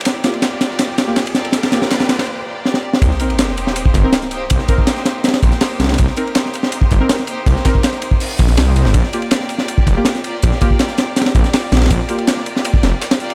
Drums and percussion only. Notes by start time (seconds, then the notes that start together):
0.01 ride
0.05 snare, closed hi-hat, ride
0.24 snare, closed hi-hat, ride
0.34 ride
0.42 snare, closed hi-hat, ride
0.61 snare, closed hi-hat, ride
0.70 snare
0.79 snare, closed hi-hat, ride
0.98 snare, closed hi-hat, ride
1.16 snare, closed hi-hat, ride
1.26 closed hi-hat, ride
1.35 snare, closed hi-hat
1.45 ride
1.52 snare, closed hi-hat, ride
1.63 snare, ride
1.72 snare, closed hi-hat, ride
1.82 snare
1.91 snare, closed hi-hat, ride
2.00 snare, closed hi-hat
2.09 snare, closed hi-hat, ride
2.19 snare, ride
2.65 snare
2.74 snare
2.93 snare
3.02 kick, closed hi-hat, ride
3.11 snare
3.19 closed hi-hat, ride
3.30 ride
3.38 snare, closed hi-hat, ride
3.48 snare
3.57 closed hi-hat, ride
3.67 snare
3.76 closed hi-hat, ride
3.86 kick
3.94 kick, snare, closed hi-hat, ride
4.12 snare, closed hi-hat, ride
4.22 snare, closed hi-hat
4.31 closed hi-hat, ride
4.50 kick, closed hi-hat, ride
4.59 snare
4.68 kick, closed hi-hat, ride
4.78 kick
4.87 snare, closed hi-hat, ride
4.96 snare, closed hi-hat
5.05 snare, closed hi-hat, ride
5.24 snare, closed hi-hat, ride
5.28 snare, ride
5.34 snare, ride
5.43 kick, closed hi-hat, ride
5.52 snare, closed hi-hat
5.61 snare, open hi-hat, ride
5.80 snare, closed hi-hat, ride
5.84 snare, ride
5.88 snare, ride
5.93 snare, ride
5.98 kick, closed hi-hat, ride
6.07 snare
6.17 closed hi-hat, ride
6.27 ride
6.35 snare, closed hi-hat, ride
6.46 snare
6.54 closed hi-hat, ride
6.63 snare
6.72 closed hi-hat, ride
6.81 kick
6.91 kick, snare, closed hi-hat, ride
7.09 snare, closed hi-hat, ride
7.19 snare, closed hi-hat
7.27 closed hi-hat, ride
7.46 kick, closed hi-hat, ride
7.56 snare
7.65 kick, snare, closed hi-hat, ride
7.75 kick
7.83 snare, closed hi-hat, ride
7.93 snare, closed hi-hat
8.02 closed hi-hat, ride
8.11 kick
8.20 closed hi-hat, open hi-hat
8.39 kick, closed hi-hat, ride
8.48 snare, closed hi-hat
8.57 snare, open hi-hat, ride
8.76 closed hi-hat, ride
8.85 snare
8.94 kick, closed hi-hat, ride
9.03 snare
9.13 closed hi-hat, ride
9.22 ride
9.31 snare, closed hi-hat, ride
9.40 snare
9.49 closed hi-hat, ride
9.58 snare
9.68 closed hi-hat, ride
9.78 kick
9.87 kick, snare, closed hi-hat, ride
10.05 snare, closed hi-hat, ride
10.15 snare, closed hi-hat
10.24 closed hi-hat, ride
10.42 kick, closed hi-hat, ride
10.52 snare
10.61 kick, closed hi-hat, ride
10.71 kick
10.79 snare, closed hi-hat, ride
10.89 snare, closed hi-hat
10.98 snare, closed hi-hat, ride
11.16 snare, closed hi-hat, ride
11.21 snare, ride
11.26 snare, ride
11.35 kick, closed hi-hat, ride
11.44 snare, closed hi-hat
11.53 snare, open hi-hat, ride
11.72 snare, closed hi-hat, ride
11.77 snare, ride
11.81 snare, ride
11.86 snare, ride
11.90 kick, closed hi-hat, ride
12.00 snare
12.09 closed hi-hat, ride
12.18 ride
12.27 snare, closed hi-hat, ride
12.37 snare
12.46 closed hi-hat, ride
12.55 snare
12.65 closed hi-hat, ride
12.74 kick
12.83 snare, closed hi-hat, ride
13.02 snare, closed hi-hat, ride
13.11 snare, closed hi-hat, ride
13.20 closed hi-hat
13.30 ride